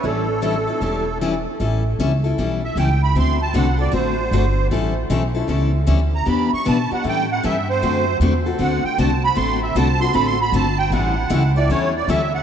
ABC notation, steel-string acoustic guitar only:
X:1
M:4/4
L:1/16
Q:"Swing" 1/4=155
K:D
V:1 name="Steel-string acoustic guitar"
[E,G,CEA]2 z2 [E,G,CEA] z [CEA]2 [E,G,CEA]2 z2 [E,G,CEA] z3 | [E,G,CEA]2 z2 [E,G,CEA] z [CEA]2 [E,G,CEA]2 z2 [E,G,CEA] z3 | [D,A,=CFA]2 z2 [D,A,CFA] z [CFA]2 [D,A,CFA]2 z2 [D,A,CFA] z3 | [E,G,CEA]2 z2 [E,G,CEA] z [CEA]2 [E,G,CEA]2 z2 [E,G,CEA] z3 |
[E,B,DG]2 z2 [E,B,DG] z [B,DG]2 [E,G,CEA]2 z2 [E,G,CEA] z3 | [D,A,=CFA]2 z2 [D,A,CFA] z [CFA]2 [D,A,CFA]2 z2 [D,A,CFA] z3 | [D,A,=CFA]2 z2 [D,A,CFA] z [CFA]2 [D,A,CFA]2 z2 [D,A,CFA] z3 | [E,G,CEA]2 z2 [E,G,CEA] z [CEA]2 [E,G,CEA]2 z2 [E,G,CEA] z3 |]